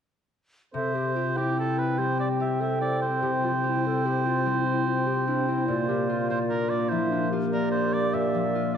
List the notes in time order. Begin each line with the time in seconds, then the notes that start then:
0.74 C3 C4 A4 C5 E5
0.94 C4 G4
1.15 F4 G4
1.36 C4 E4 G4 G5
1.58 E4 A4
1.78 C4 B4
1.98 G3 G4 C5
2.19 C4 D5
2.40 G4 E5
2.60 C4 A4 E5
2.81 E4 D5
3.02 C4 C5
3.22 C3 G4
3.43 G3 F4
3.64 E4 G4
3.84 C4 A4
4.05 E4 G4
4.25 C4 F4
4.46 G3 E4
4.66 C4 E4
4.86 F4 G4
5.06 C4 G4
5.27 D4 E4
5.48 C4 E4
5.66 A#2 A#3 F4 D5
5.89 A#3 G4
6.09 F4
6.30 A#3 C5
6.49 D4 A#4
6.70 A#3 D5
6.89 F3 E4 C5 E5
7.11 A#3 D4
7.31 F4 G4
7.51 A#3 A#4 D5
7.71 D4 C5
7.93 A#3 D5
8.13 A#2 D5 E5
8.34 F3
8.55 F4
8.74 F4 D5